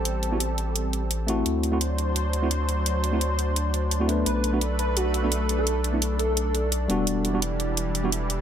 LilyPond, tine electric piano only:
\new Staff \with { instrumentName = "Tine electric piano" } { \time 4/4 \key d \mixolydian \tempo 4 = 171 r8. <b c' e' fis'>16 r2 r8 <a c' e' fis'>8~ | <a c' e' fis'>8. <a c' e' fis'>16 r4. r16 <a c' e' fis'>16 r4 | r8. <a c' e' fis'>16 r2 r16 <a c' e' fis'>16 <a b d' b'>8~ | <a b d' b'>8. <a b d' fis'>16 r4. r16 <a b d' fis'>16 r4 |
r8. <a b d' e'>16 r2 r8 <g b d' fis'>8~ | <g b d' fis'>8. <g b d' fis'>16 r4. r16 <g b d' fis'>16 r4 | }